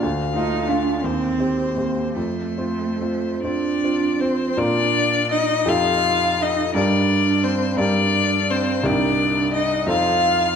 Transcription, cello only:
0.35 0.69 D#4 medium
0.68 1.04 D4 medium
1.02 1.75 C4 medium
1.76 2.16 A#3 medium
2.14 3.42 A3 medium
3.42 4.23 D4 medium
4.21 4.60 C4 medium
4.59 5.32 D4 loud
5.31 5.69 D#4 medium
5.68 6.43 F4 loud
6.42 6.75 D#4 medium
6.75 7.46 D4 medium
7.44 7.82 C4 medium
7.80 8.52 D4 medium
8.51 8.85 C4 medium
8.86 9.56 D4 medium
9.55 9.91 D#4 medium
9.89 10.56 F4 medium

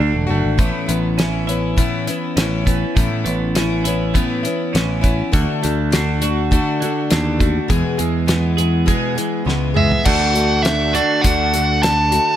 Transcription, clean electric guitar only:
0.00 0.59 D3 medium
0.00 0.30 A3 medium
0.00 0.59 D4 medium
0.00 0.59 F#4 medium
0.30 0.88 A3 medium
0.60 2.08 A2 medium
0.88 1.76 B3 medium
1.18 2.35 C#4 medium
1.47 2.96 E4 medium
1.78 2.65 B3 medium
2.08 3.56 E3 medium
2.37 3.54 C#4 medium
2.66 3.23 B3 medium
2.95 4.44 A2 medium
3.25 4.13 B3 medium
3.55 4.72 C#4 medium
3.84 5.33 E4 medium
4.14 5.02 B3 medium
4.44 5.33 E3 medium
4.73 5.33 C#4 medium
5.03 5.33 B3 medium
5.34 6.79 D3 medium
5.63 6.51 A3 medium
5.93 7.09 D4 medium
6.22 7.70 F#4 medium
6.52 7.39 A3 medium
6.80 7.69 D3 medium
7.11 7.70 D4 medium
7.40 7.70 A3 medium
7.69 9.17 E2 medium
7.98 8.87 G#3 medium
8.27 9.45 B3 medium
8.57 10.06 G#4 medium
8.88 9.74 G#3 medium
9.18 10.05 E3 medium
9.47 10.06 B3 medium
9.76 10.06 G#3 medium
10.06 10.93 D3 medium
10.06 10.94 A3 medium
10.06 10.94 D4 medium
10.06 10.93 F#4 medium
10.93 12.36 D3 medium
10.93 12.36 A3 medium
10.93 12.36 D4 medium
10.93 12.36 F#4 medium

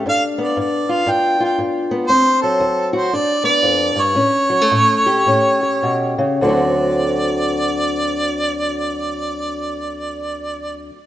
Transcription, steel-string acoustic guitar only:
0.06 0.53 G2 medium
0.06 1.07 D4 medium
0.38 1.90 B3 medium
0.57 1.04 G2 medium
0.89 1.39 F4 medium
1.06 1.54 G2 medium
1.06 2.07 D4 medium
1.40 2.08 F4 medium
1.58 2.06 G2 medium
1.91 2.08 B3 medium
2.09 2.57 D2 medium
2.09 3.10 C4 medium
2.44 3.13 F#3 medium
2.60 3.08 D2 medium
2.93 3.10 F#4 medium
3.13 3.61 G2 medium
3.13 4.15 D4 medium
3.44 4.14 B3 medium
3.63 3.95 F2 medium
3.96 4.16 G2 medium
4.15 4.66 A2 medium
4.15 5.26 C#4 medium
4.50 4.61 F#3 medium
4.61 6.41 A3 soft
4.72 5.22 A2 medium
5.06 5.62 G4 medium
5.26 5.79 A2 medium
5.26 6.39 C#4 medium
5.63 6.39 G4 medium
5.83 6.18 B2 medium
6.18 6.41 C#3 medium
6.41 10.90 D2 medium
6.41 10.91 D3 medium
6.41 10.93 F#3 medium
6.47 10.96 C4 medium
6.47 10.97 F#4 medium

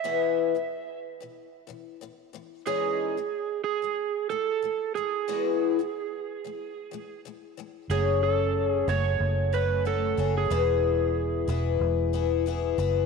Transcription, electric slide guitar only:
0.00 1.00 E5 medium
2.67 3.63 G#4 medium
3.64 4.29 G#4 medium
4.30 4.95 A4 medium
4.95 7.20 G#4 medium
7.91 8.23 G#4 medium
8.23 8.70 A4 medium
8.70 8.90 G#4 medium
8.89 9.55 C#5 medium
9.54 9.87 B4 medium
9.87 10.37 A4 medium
10.38 11.63 G#4 medium

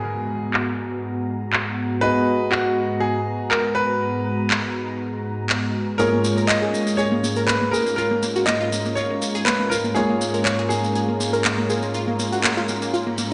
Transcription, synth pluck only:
5.99 6.09 G#4 medium
6.13 6.21 A#3 medium
6.24 6.33 A#3 medium
6.37 6.46 A#4 medium
6.49 6.58 A#3 medium
6.62 6.70 G#4 medium
6.74 6.83 A#3 medium
6.87 6.95 A#3 medium
6.99 7.08 G#4 medium
7.12 7.20 A#3 medium
7.23 7.33 A#3 medium
7.37 7.45 A#4 medium
7.48 7.57 A#3 medium
7.61 7.70 A#3 medium
7.73 7.82 G#4 medium
7.86 7.94 A#3 medium
7.98 8.07 F4 medium
8.11 8.19 A#3 medium
8.23 8.32 A#3 medium
8.36 8.44 F#4 medium
8.47 8.57 A#3 medium
8.61 8.69 F4 medium
8.72 8.81 A#3 medium
8.85 8.93 A#3 medium
8.97 9.06 F4 medium
9.10 9.18 A#3 medium
9.22 9.31 A#3 medium
9.35 9.43 G#4 loud
9.47 9.56 A#3 medium
9.60 9.68 A#3 medium
9.71 9.81 F4 medium
9.84 9.93 A#3 medium
9.96 10.05 G#4 loud
10.09 10.17 A#3 medium
10.21 10.30 A#3 medium
10.34 10.42 A#4 medium
10.46 10.55 A#3 medium
10.59 10.67 G#4 medium
10.71 10.80 A#3 medium
10.84 10.92 A#3 medium
10.95 11.05 G#4 loud
11.08 11.17 A#3 medium
11.20 11.29 A#3 medium
11.33 11.41 A#4 medium
11.45 11.54 A#3 medium
11.58 11.66 A#3 medium
11.70 11.79 G#4 medium
11.83 11.91 A#3 medium
11.94 12.04 F4 loud
12.08 12.16 A#3 medium
12.19 12.28 A#3 medium
12.32 12.41 F#4 medium
12.44 12.53 A#3 medium
12.57 12.65 F4 medium
12.69 12.78 A#3 medium
12.82 12.90 A#3 medium
12.94 13.03 F4 medium
13.07 13.15 A#3 medium
13.18 13.28 A#3 medium

